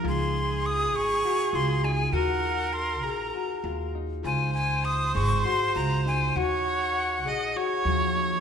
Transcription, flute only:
X:1
M:7/8
L:1/8
Q:1/4=100
K:Ebdor
V:1 name="Flute"
c'2 e' d'2 c' a | g2 c' b3 z | a a e' d' c' b a | g6 z |]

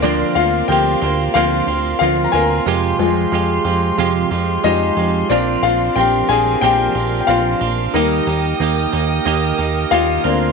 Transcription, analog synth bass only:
X:1
M:4/4
L:1/8
Q:1/4=91
K:Bbmix
V:1 name="Analog synth bass" clef=bass
D,, D,, D,, D,, D,, D,, D,, D,, | F,, F,, F,, F,, F,, F,, F,, F,, | B,,, B,,, B,,, B,,, B,,, B,,, B,,, B,,, | E,, E,, E,, E,, E,, E,, E,, D,, |]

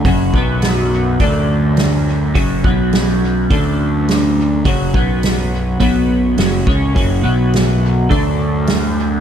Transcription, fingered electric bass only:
X:1
M:4/4
L:1/8
Q:1/4=104
K:none
V:1 name="Fingered electric bass" clef=bass
^F,,, B,,,3 D,,4 | ^F,,, B,,,3 D,,4 | ^F,,, B,,,3 B,,,2 F,,, ^C,, | ^F,,, B,,,3 D,,4 |]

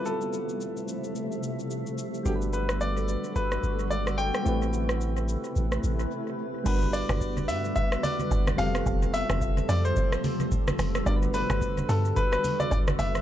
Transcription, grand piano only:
X:1
M:4/4
L:1/16
Q:"Swing 16ths" 1/4=109
K:G
V:1 name="Grand piano"
A12- A2 z2 | G2 B2 d4 B4 d2 g2- | g12 z4 | B2 d4 e2 e2 d4 =f2- |
=f2 e4 d c6- c z2 | d2 B4 A2 B B2 d d2 e2 |]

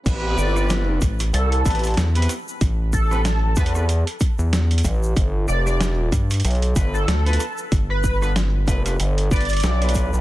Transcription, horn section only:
X:1
M:4/4
L:1/16
Q:"Swing 16ths" 1/4=94
K:Am
V:1 name="Horn section"
[B,CEGB]6 z4 [B,CEGB] z2 [B,CEGB] z2 | z3 [B,CEGB] z2 [B,CEGB] [B,CEGB] z8 | z8 z2 [B,DFAB] z2 [B,DFAB] z2 | z3 [B,DFAB] z2 [B,DFAB] [B,DFAB] z2 [B,DFAB] z2 [B,DFAB]3 |]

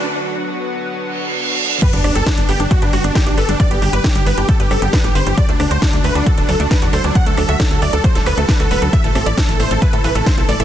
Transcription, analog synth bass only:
X:1
M:4/4
L:1/16
Q:1/4=135
K:G
V:1 name="Analog synth bass" clef=bass
z16 | z G,,, G,,, G,,, z G,,, G,,, G,,, z G,, G,,, G,,, z A,,, G,,, G,,, | z G,,, G,,, G,,, z G,,, G,,, G,,, z G,, G,,, G,,, z A,,, G,,, G,,, | z D,, D,, D,, z D,, D,, D,, z D,,, D,, D,, z E,, D,, D,, |
z D,, D,, D,, z D,, D,, D,, z D,,, D,, D,, z D,, D,,, D,, | z A,,, A,,, A,,, z A,,, A,,, A,,, z A,, A,,, A,,, z B,,, A,,, A,,, |]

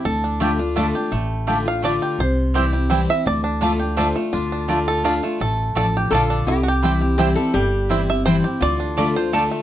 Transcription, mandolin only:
X:1
M:3/4
L:1/16
Q:1/4=168
K:Dm
V:1 name="Mandolin"
z4 [A,Fda] z3 [A,Fda] z3 | z4 [A,Fda] z3 [A,Fda] z3 | z4 [CEcg] z3 [CEcg] z3 | z4 [A,Fda] z3 [A,Fda] z3 |
z4 [A,Fda] z3 [A,Fda] z3 | z4 [A,Fda] z3 [A,Fda] z3 | z4 [CEcg] z3 [CEcg] z3 | z4 [CEcg] z3 [CEcg] z3 |
z4 [A,Fda] z3 [A,Fda] z3 |]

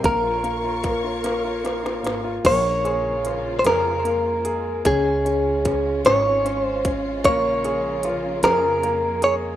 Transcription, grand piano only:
X:1
M:6/8
L:1/16
Q:3/8=50
K:Bbdor
V:1 name="Grand piano"
B, F B, F B, F B, F B, F B, F | B,2 A2 F2 A2 B,2 A2 | D2 D2 D2 D2 D2 D2 | B,2 A2 F2 A2 B,2 A2 |]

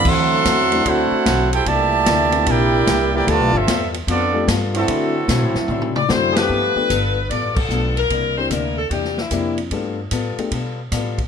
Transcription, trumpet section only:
X:1
M:4/4
L:1/8
Q:"Swing" 1/4=149
K:Dmix
V:1 name="Trumpet section"
[Aefc']4 [EAcf]3 [EAcg] | [Gdea]4 [E_Bdg]3 [EBdg] | [=FBda] [CFAe]2 z [B,FAd]2 z [C^FAe]- | [CFAe]6 z2 |
[K:Gmix] z8 | z8 | z8 |]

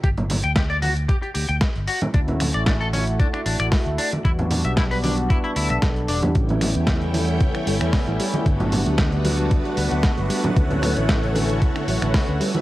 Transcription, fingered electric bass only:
X:1
M:4/4
L:1/16
Q:1/4=114
K:D
V:1 name="Fingered electric bass" clef=bass
G,,,3 D,,4- D,, z2 D,, D,, z G,,, z2 | D,,3 A,,,4- A,,, z2 A,,, A,,, z D,, z2 | E,,3 B,,,4- B,,, z2 D,, B,,, z2 E,,, E,, | A,,,3 E,,4- E,, z2 G,,, E,, z A,,, z2 |
G,,,3 D,,4- D,, z2 D,, D,, z G,,, z2 | D,,3 A,,,4- A,,, z2 A,,, A,,, z D,, z2 |]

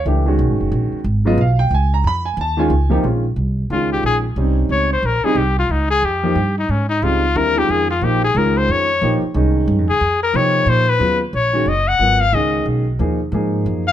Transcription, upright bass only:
X:1
M:3/4
L:1/8
Q:"Swing" 1/4=181
K:C#mix
V:1 name="Upright bass" clef=bass
C,,2 (3B,,, G,,, F,,, A,,, z | G,,,2 B,,,2 C,,2 | =F,,2 _E,,2 C,,2 | [K:Bbdor] B,,,2 C,,2 D,,2 |
B,,,2 C,,2 D,,2 | B,,, z C,,2 D,,2 | F,,2 G,,2 A,,2 | D,,2 E,,2 F,,2 |
B,,,2 D,,2 F,,2 | B,,, z C,,2 (3G,, F,, D,, | F,,2 C,2 B,,2 | [K:G#dor] D,,2 A,,,2 F,,,2 |
G,,,2 C,,2 B,,,2 | D,,2 G,,2 F,,2 |]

